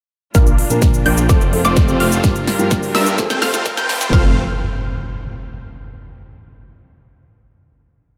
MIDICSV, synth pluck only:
0, 0, Header, 1, 2, 480
1, 0, Start_track
1, 0, Key_signature, -1, "major"
1, 0, Tempo, 472441
1, 355, Time_signature, 4, 2, 24, 8
1, 8310, End_track
2, 0, Start_track
2, 0, Title_t, "Synth pluck"
2, 0, Program_c, 0, 84
2, 354, Note_on_c, 0, 89, 99
2, 558, Note_off_c, 0, 89, 0
2, 1075, Note_on_c, 0, 91, 92
2, 1202, Note_off_c, 0, 91, 0
2, 1315, Note_on_c, 0, 86, 79
2, 1442, Note_off_c, 0, 86, 0
2, 1674, Note_on_c, 0, 86, 103
2, 2005, Note_off_c, 0, 86, 0
2, 2034, Note_on_c, 0, 89, 90
2, 2237, Note_off_c, 0, 89, 0
2, 2994, Note_on_c, 0, 88, 103
2, 3198, Note_off_c, 0, 88, 0
2, 3356, Note_on_c, 0, 91, 93
2, 3446, Note_off_c, 0, 91, 0
2, 3475, Note_on_c, 0, 89, 81
2, 3806, Note_off_c, 0, 89, 0
2, 3834, Note_on_c, 0, 91, 87
2, 4166, Note_off_c, 0, 91, 0
2, 4195, Note_on_c, 0, 89, 97
2, 4374, Note_off_c, 0, 89, 0
2, 8310, End_track
0, 0, End_of_file